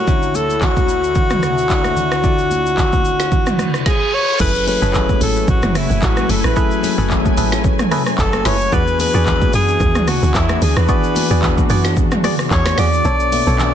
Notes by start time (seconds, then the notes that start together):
Already playing: F#4
0.07 D2 D3 D4 E4 F#4 C#5, kick, low conga, shaker
0.23 shaker
0.35 A4, high conga, shaker
0.50 shaker
0.61 F#4, kick, clap, low conga, shaker
0.76 kick, high conga, shaker
0.89 shaker
1.04 shaker
1.15 kick, low conga, shaker
1.30 cross-stick, mid tom, high conga, shaker
1.43 cross-stick, high conga, shaker
1.58 shaker
1.69 D3 D4 E4 F#4 D5, kick, clap, shaker
1.84 cross-stick, high conga, shaker
1.97 high conga, low conga, shaker
2.12 cross-stick, shaker
2.23 D3 D4 E4 F4 D5, kick, low conga, shaker
2.31 F#4
2.39 shaker
2.51 high conga, shaker
2.66 shaker
2.78 kick, clap, low conga, shaker
2.93 kick, high conga, shaker
3.05 shaker
3.20 snare, shaker
3.32 kick, reverse cymbal, low conga, shaker
3.46 cross-stick, mid tom, high conga, shaker
3.59 cross-stick, mid tom, high conga, shaker
3.74 cross-stick, shaker
3.86 G#4, kick, snare
4.14 C#5
4.39 F#1 F#3 A3 C#4 E4 G#4 A4 B4 G#5, kick, crash, low conga, shaker
4.55 shaker
4.66 F#3 C#4 E4 G#4 A4 B4 C#5, open hi-hat, high conga, shaker
4.81 F#1 F#3 C#4 E4 G#4 A4 B4 C#5, shaker
4.94 kick, clap, low conga, shaker
5.09 kick, high conga, shaker
5.21 A1 A4, open hi-hat, shaker
5.36 shaker
5.48 A1 F#4, kick, low conga, shaker
5.63 F#1, cross-stick, mid tom, high conga, shaker
5.75 E4, cross-stick, open hi-hat, high conga, shaker
5.90 F#1, shaker
6.02 A1 F#4, kick, clap, shaker
6.17 cross-stick, high conga, shaker
6.29 F#1 A4, open hi-hat, high conga, shaker
6.44 A1 B4, cross-stick, shaker
6.56 F#3 C#4 E4 G#4 A4 B4, kick, low conga, shaker
6.71 shaker
6.83 F#3 C#4 E4 G#4 A4 B4, open hi-hat, high conga, shaker
6.97 F#1 F#3 C#4 E4 G#4 A4 B4 C#5, shaker
7.10 kick, clap, low conga, shaker
7.25 kick, high conga, shaker
7.37 A1 E4 G#4 A4 B4, open hi-hat, shaker
7.52 snare, shaker
7.64 kick, low conga, shaker
7.79 cross-stick, mid tom, high conga, shaker
7.91 E4 G#4 A4 B4, cross-stick, open hi-hat, high conga, shaker
8.06 cross-stick, shaker
8.18 F#1 A4, kick, clap, shaker
8.33 cross-stick, high conga, shaker
8.45 F#1 E4 G#4 A4 B4 C#5, snare, open hi-hat, high conga, shaker
8.61 shaker
8.72 E2 E3 B3 D4 F#4 G#4 B4 D5, kick, low conga, shaker
8.87 shaker
8.99 E3 B3 D4 F#4 G#4 B4, open hi-hat, high conga, shaker
9.13 E2 E3 B3 D4 F#4 G#4 D5, shaker
9.26 kick, clap, low conga, shaker
9.41 kick, high conga, shaker
9.53 F#2 G#4, open hi-hat, shaker
9.68 shaker
9.80 E2, kick, low conga, shaker
9.95 D2, cross-stick, mid tom, high conga, shaker
10.08 F#4, cross-stick, open hi-hat, high conga, shaker
10.23 D2, shaker
10.35 E2 E4, kick, clap, shaker
10.49 cross-stick, high conga, shaker
10.62 D2 G#4, open hi-hat, high conga, shaker
10.77 E2 B4, cross-stick, shaker
10.88 E3 B3 D4 F#4 G#4 B4 D5, kick, low conga, shaker
11.04 shaker
11.15 E3 B3 D4 F#4 G#4, open hi-hat, high conga, shaker
11.30 E2 E3 B3 D4 F#4 G#4 D5, shaker
11.42 kick, clap, low conga, shaker
11.58 kick, high conga, shaker
11.70 F#2 F#4 G#4 D5, open hi-hat, shaker
11.85 snare, shaker
11.97 kick, low conga, shaker
12.11 cross-stick, mid tom, high conga, shaker
12.24 F#4 G#4 D5, cross-stick, mid tom, open hi-hat, high conga, shaker
12.39 cross-stick, shaker
12.51 E2 C#5, kick, clap, shaker
12.65 cross-stick, snare, high conga, shaker
12.78 E2 F#4 G#4 D5, snare, open hi-hat, high conga, shaker
12.93 shaker
13.04 B1 B2 B3 D4 A4 C#5, low conga, shaker
13.20 shaker
13.31 B2 B3 D4 A4 E5, open hi-hat, high conga, shaker
13.46 B1 B2 B3 C#4 D4 A4 C#5 D5, shaker
13.54 D4
13.59 clap, low conga, shaker